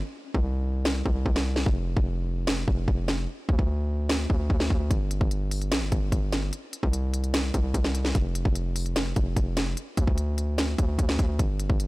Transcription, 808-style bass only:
0.34 C2
1.06 C2
1.26 C2
1.66 F1
1.97 F1
2.68 F1
2.88 F1
3.49 D2
4.30 D2
4.50 D2
4.70 D2
4.91 G1
5.21 G1
5.72 A#1
5.82 G1
5.92 G1
6.12 G1
6.83 C2
7.54 C2
7.74 C2
8.15 F1
8.45 F1
9.16 F1
9.36 F1
9.97 D2
10.79 D2
10.99 D2
11.19 D2
11.39 G1
11.70 G1

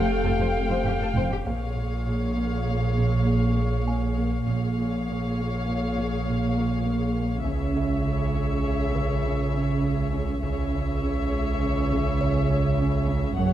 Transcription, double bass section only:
0.24 F1
0.85 F1
1.15 F1
1.46 A#1
4.46 A#1
7.45 C#2
10.42 C#2
13.36 F#1

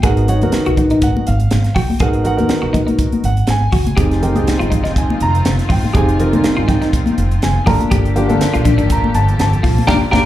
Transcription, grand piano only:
0.03 B3 D#4 F#4 A#4 F#5
0.28 B3 D#4 F#4 C#5 F#5
0.42 B3 D#4 F#4 A#4
1.03 F#5
1.27 F5
1.75 G5
2.00 B3 D#4 F#4 A#4 F#5
2.23 B3 D#4 F#4 A#4 F#5
2.36 B3 D#4 F#4 A#4
3.25 F#5
3.50 G#5
3.96 C4 D#4 G4 G#4
4.21 C4 D#4 G4 A#4 G5
4.35 C4 D#4 G4 G#4
4.98 G#5
5.22 A#5
5.72 G5
5.95 C4 D#4 G4 G#4 G#5
6.19 C4 D#4 G4 A#4
6.32 G3 C4 D#4 A#4
6.69 G5
7.43 G#5
7.67 A#3 D4 F4 A4 A#5
8.15 A#3 D4 F4 G4
8.28 A#3 D4 F4 A4
8.92 A#5
9.15 A5
9.41 A5
9.87 D4 F4 G4 F5 G5 A#5
10.11 D4 F4 G4 F5 G5 A#5

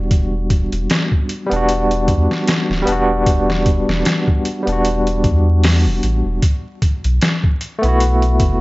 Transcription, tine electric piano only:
Already playing: G3 B3 D4 F#4
1.46 G3 B3
1.53 D4 F#4
2.82 G3 B3
2.89 D4 F#4
4.63 G3 B3
4.69 D4 F#4
7.79 A3 B3
7.85 E4 F#4

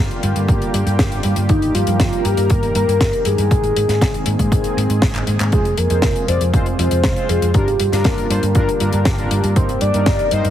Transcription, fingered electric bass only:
0.23 G2
0.36 G2
0.49 G1
0.74 G2
0.86 G2
0.99 G1
1.24 G2
1.37 G2
1.49 G1
1.75 G2
1.87 G2
2.00 G1
2.25 G2
2.37 G2
2.50 G1
2.75 G2
2.88 G2
3.01 G1
3.26 G2
3.38 G2
3.51 G#1
3.76 G#2
3.89 G#2
4.01 G#1
4.26 G#2
4.39 G#2
4.52 G#1
4.77 G#2
4.90 G#2
5.02 G#1
5.28 G#2
5.40 G#2
5.53 F1
5.78 F2
5.91 F2
6.28 F2
6.41 F2
6.53 F1
6.79 F2
6.91 F2
7.04 F1
7.29 F2
7.42 F2
7.54 G1
7.80 G2
7.92 G2
8.05 G1
8.30 G2
8.43 G2
8.55 G1
8.81 G2
8.93 G2
9.06 G1
9.31 G2
9.44 G2
9.56 G1
9.82 G2
9.94 G2
10.07 G1
10.32 G2
10.44 G2

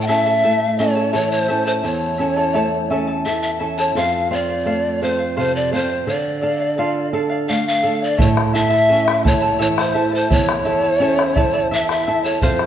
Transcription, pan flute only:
0.02 G5
0.07 E5
0.78 C#5
1.14 C#5
1.32 C5
1.67 C5
1.85 C#5
3.26 E5
3.42 E5
3.79 C#5
3.96 F5
4.33 D5
5.03 C5
5.39 C5
5.56 D5
5.73 C5
6.08 D5
7.49 F5
7.68 F5
8.04 D5
8.21 C#5
8.56 E5
9.27 C#5
9.61 C#5
9.80 C5
10.15 C5
10.31 C#5
11.74 E5
11.91 E5
12.24 C#5
12.42 C5

